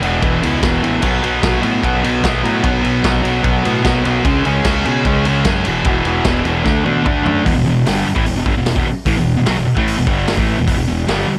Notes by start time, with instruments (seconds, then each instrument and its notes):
0.01 fingered electric bass E1, distorted electric guitar E2 B2 E3, ride
0.22 fingered electric bass E1, distorted electric guitar E2 B2 E3, kick, ride
0.43 fingered electric bass C#2, distorted electric guitar E2 B2 E3, ride
0.62 fingered electric bass E1, distorted electric guitar E2 B2 E3, kick, snare, ride
0.83 fingered electric bass A1, distorted electric guitar E2 B2 E3, ride
1.02 fingered electric bass B1, distorted electric guitar B2 F#3 B3, kick, crash
1.23 fingered electric bass B1, distorted electric guitar B2 F#3 B3, ride
1.43 fingered electric bass B1, distorted electric guitar B2 F#3 B3, kick, snare, ride
1.62 fingered electric bass A2, distorted electric guitar B2 F#3 B3, ride
1.83 fingered electric bass B1, distorted electric guitar B2 F#3 B3, kick, ride
2.04 distorted electric guitar B2 F#3 B3, ride
2.24 fingered electric bass B1, distorted electric guitar B2 F#3 B3, kick, snare, ride
2.43 fingered electric bass A2, distorted electric guitar B2 F#3 B3, ride
2.63 fingered electric bass B1, distorted electric guitar B2 F#3 B3, kick, ride
2.83 fingered electric bass B1, distorted electric guitar B2 F#3 B3, ride
3.04 fingered electric bass B1, distorted electric guitar B2 F#3 B3, kick, snare, ride
3.23 fingered electric bass B1, distorted electric guitar B2 F#3 B3, ride
3.44 fingered electric bass B1, distorted electric guitar B2 F#3 B3, kick, ride
3.65 fingered electric bass A2, distorted electric guitar B2 F#3 B3, ride
3.84 fingered electric bass B1, distorted electric guitar B2 F#3 B3, kick, snare, ride
4.05 fingered electric bass B1, distorted electric guitar B2 F#3 B3, ride
4.25 fingered electric bass C#2, distorted electric guitar C#3 G#3 C#4, kick, ride
4.45 fingered electric bass C#2, distorted electric guitar C#3 G#3 C#4, ride
4.64 fingered electric bass C#2, distorted electric guitar C#3 G#3 C#4, kick, snare, ride
4.85 fingered electric bass B2, distorted electric guitar C#3 G#3 C#4, ride
5.05 fingered electric bass C#2, distorted electric guitar C#3 G#3 C#4, kick, ride
5.25 distorted electric guitar C#3 G#3 C#4, ride
5.44 fingered electric bass F#2, distorted electric guitar C#3 G#3 C#4, kick, snare, ride
5.65 fingered electric bass E1, distorted electric guitar E2 B2 E3, ride
5.84 fingered electric bass E1, distorted electric guitar E2 B2 E3, kick, ride
6.05 fingered electric bass E1, distorted electric guitar E2 B2 E3, ride
6.24 fingered electric bass E1, distorted electric guitar E2 B2 E3, kick, snare, ride
6.45 fingered electric bass E1, distorted electric guitar E2 B2 E3, ride
6.65 fingered electric bass D2, distorted electric guitar D3 A3 D4, kick, snare
6.84 fingered electric bass B2, distorted electric guitar D3 A3 D4, high tom
7.04 fingered electric bass D2, distorted electric guitar D3 A3 D4, kick, mid tom
7.23 fingered electric bass F#2, distorted electric guitar D3 A3 D4, floor tom
7.44 fingered electric bass E1, distorted electric guitar E2 B2, kick, open hi-hat
7.55 fingered electric bass E1, distorted electric guitar E2 B2
7.65 fingered electric bass E1, distorted electric guitar E2 B2
7.86 fingered electric bass G1, distorted electric guitar G2 D3 G3, snare, open hi-hat
8.05 muted distorted electric guitar stroke
8.15 fingered electric bass A1, distorted electric guitar A2 E3, kick
8.25 fingered electric bass E1, distorted electric guitar E2 B2, open hi-hat
8.36 fingered electric bass E1, distorted electric guitar E2 B2
8.46 fingered electric bass G1, distorted electric guitar G2 D3, kick
8.57 fingered electric bass E1, distorted electric guitar E2 B2
8.66 snare, open hi-hat
8.75 fingered electric bass E1, distorted electric guitar E2 B2, kick
8.87 muted distorted electric guitar stroke
9.05 fingered electric bass A1, distorted electric guitar A2 E3, kick, open hi-hat
9.17 fingered electric bass E1, distorted electric guitar E2 B2
9.36 fingered electric bass E1, distorted electric guitar E2 B2
9.46 fingered electric bass B1, distorted electric guitar B2 F#3, snare, open hi-hat
9.57 fingered electric bass E1, distorted electric guitar E2 B2
9.66 muted distorted electric guitar stroke, muted fingered electric bass stroke
9.76 fingered electric bass A1, distorted electric guitar A2 E3 A3, kick
9.87 open hi-hat
9.97 fingered electric bass E1, distorted electric guitar E2 B2
10.07 fingered electric bass G1, distorted electric guitar G2 D3 G3, kick
10.27 snare, open hi-hat
10.37 fingered electric bass A1, distorted electric guitar A2 E3 A3, kick
10.57 fingered electric bass E1, distorted electric guitar E2 B2
10.67 fingered electric bass E1, distorted electric guitar E2 B2, kick, open hi-hat
10.77 fingered electric bass E1, distorted electric guitar E2 B2
10.86 fingered electric bass E1, distorted electric guitar E2 B2
11.07 fingered electric bass G1, distorted electric guitar G2 D3 G3, snare, open hi-hat
11.28 muted distorted electric guitar stroke